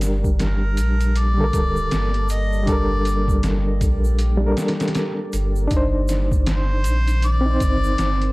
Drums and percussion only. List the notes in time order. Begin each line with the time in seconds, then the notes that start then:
0.01 snare, closed hi-hat, shaker
0.24 kick, shaker
0.39 snare, closed hi-hat, shaker
0.77 closed hi-hat, shaker
1.00 closed hi-hat, shaker
1.16 closed hi-hat, shaker
1.53 kick, closed hi-hat, shaker
1.76 shaker
1.91 snare, closed hi-hat, shaker
2.14 closed hi-hat
2.29 closed hi-hat, shaker
2.53 shaker
2.67 kick, closed hi-hat, shaker
3.05 closed hi-hat, shaker
3.28 kick, shaker
3.43 snare, closed hi-hat, shaker
3.81 kick, closed hi-hat, shaker
4.04 shaker
4.19 closed hi-hat, shaker
4.57 snare, closed hi-hat, shaker
4.68 snare, closed hi-hat
4.80 snare, closed hi-hat, shaker
4.88 snare, closed hi-hat
4.95 snare, closed hi-hat, shaker
5.33 closed hi-hat, shaker
5.56 shaker
5.70 kick, closed hi-hat, shaker
6.08 snare, closed hi-hat, shaker
6.31 kick, shaker
6.46 snare, closed hi-hat, shaker
6.84 closed hi-hat, shaker
7.07 closed hi-hat, shaker
7.22 closed hi-hat, shaker
7.60 kick, closed hi-hat, shaker
7.84 shaker
7.98 snare, closed hi-hat, shaker
8.22 closed hi-hat